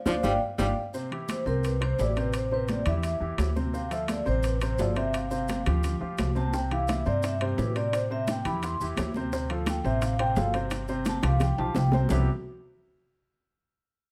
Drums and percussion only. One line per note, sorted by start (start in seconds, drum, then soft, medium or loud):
0.06 low bongo medium
0.06 high conga medium
0.06 high timbale loud
0.06 maracas medium
0.23 low bongo medium
0.23 high conga loud
0.23 high timbale medium
0.23 maracas medium
0.59 low bongo medium
0.59 high conga medium
0.59 high timbale loud
0.59 maracas medium
0.94 high conga soft
0.94 maracas medium
1.12 high conga soft
1.12 high timbale medium
1.29 high conga medium
1.29 high timbale medium
1.29 low timbale medium
1.29 maracas medium
1.46 high conga soft
1.46 maracas soft
1.64 high timbale medium
1.64 maracas medium
1.82 high conga soft
1.82 high timbale medium
1.99 high conga medium
1.99 low timbale medium
1.99 maracas medium
2.16 high conga soft
2.16 high timbale medium
2.16 maracas soft
2.33 high conga soft
2.33 high timbale medium
2.33 maracas medium
2.51 high conga soft
2.68 high conga medium
2.68 high timbale medium
2.68 low timbale medium
2.68 maracas medium
2.86 high conga soft
2.86 low conga medium
2.86 high timbale medium
2.86 maracas soft
3.03 high conga soft
3.03 high timbale medium
3.03 maracas medium
3.22 high conga soft
3.38 high conga medium
3.38 high timbale medium
3.38 low timbale medium
3.38 maracas medium
3.56 high conga medium
3.56 maracas soft
3.74 high conga soft
3.74 maracas medium
3.91 high conga soft
3.91 high timbale medium
3.91 maracas medium
4.08 high conga medium
4.08 high timbale medium
4.08 low timbale medium
4.08 maracas medium
4.26 high conga soft
4.26 maracas soft
4.43 high conga soft
4.43 high timbale medium
4.43 maracas medium
4.61 high conga soft
4.61 high timbale medium
4.61 maracas medium
4.78 high conga medium
4.78 low timbale medium
4.78 maracas medium
4.96 high conga soft
4.96 high timbale medium
4.96 maracas soft
5.14 high conga soft
5.14 high timbale medium
5.14 maracas medium
5.31 high conga soft
5.31 maracas medium
5.48 high conga medium
5.48 high timbale medium
5.48 low timbale medium
5.48 maracas medium
5.66 high conga soft
5.66 low conga medium
5.66 high timbale medium
5.66 maracas soft
5.84 high conga soft
5.84 low conga medium
5.84 high timbale medium
5.84 maracas medium
6.02 high conga soft
6.18 high conga medium
6.18 high timbale medium
6.18 low timbale medium
6.18 maracas medium
6.36 high conga medium
6.36 maracas soft
6.53 high bongo medium
6.53 high conga soft
6.53 maracas medium
6.71 high bongo soft
6.71 high conga soft
6.71 high timbale medium
6.88 high bongo medium
6.88 high conga medium
6.88 high timbale medium
6.88 low timbale medium
6.88 maracas medium
7.06 high conga soft
7.06 maracas soft
7.23 high bongo medium
7.23 high conga soft
7.23 high timbale medium
7.23 maracas medium
7.41 high bongo soft
7.41 high conga soft
7.41 high timbale medium
7.58 high bongo soft
7.58 low bongo medium
7.58 high conga medium
7.58 low timbale medium
7.58 maracas medium
7.76 high bongo soft
7.76 high conga soft
7.76 high timbale medium
7.76 maracas soft
7.93 high bongo medium
7.93 high conga soft
7.93 high timbale medium
7.93 maracas medium
8.11 high bongo soft
8.11 high conga soft
8.28 high bongo medium
8.28 high conga medium
8.28 high timbale medium
8.28 low timbale medium
8.28 maracas medium
8.45 high conga soft
8.45 low conga medium
8.45 high timbale medium
8.45 maracas soft
8.63 high bongo medium
8.63 high conga soft
8.63 high timbale medium
8.63 maracas medium
8.80 high bongo soft
8.80 high conga soft
8.80 maracas medium
8.97 high bongo soft
8.97 low bongo medium
8.97 high conga medium
8.97 high timbale loud
8.97 low timbale medium
8.97 maracas medium
9.14 high bongo soft
9.14 high conga medium
9.14 maracas soft
9.32 high bongo medium
9.32 high conga soft
9.32 maracas medium
9.49 high bongo soft
9.49 high conga soft
9.49 high timbale medium
9.66 high bongo medium
9.66 high conga medium
9.66 high timbale medium
9.66 low timbale medium
9.66 maracas medium
9.84 high conga soft
9.84 maracas soft
10.02 high bongo medium
10.02 high conga soft
10.02 high timbale medium
10.02 maracas medium
10.19 high bongo soft
10.19 high conga soft
10.19 high timbale medium
10.36 high bongo soft
10.36 low bongo medium
10.36 high conga medium
10.36 low timbale medium
10.36 maracas medium
10.54 high bongo soft
10.54 high conga soft
10.54 high timbale medium
10.54 maracas soft
10.71 high bongo medium
10.71 high conga soft
10.71 high timbale medium
10.71 maracas medium
10.88 high conga soft
10.88 maracas medium
11.05 high bongo medium
11.05 high conga medium
11.05 high timbale medium
11.05 low timbale medium
11.05 maracas medium
11.23 high bongo loud
11.23 high conga soft
11.23 low conga medium
11.23 high timbale loud
11.23 maracas soft
11.40 low bongo medium
11.40 high conga soft
11.40 low conga medium
11.40 high timbale medium
11.40 maracas medium
11.58 high conga soft
11.58 high timbale medium
11.74 low bongo loud
11.74 high conga medium
11.74 high timbale loud
11.74 maracas medium
11.92 low bongo loud
11.92 high conga medium
11.92 low timbale medium
11.92 maracas soft
12.09 low bongo loud
12.09 low conga medium
12.09 low timbale loud
12.09 maracas medium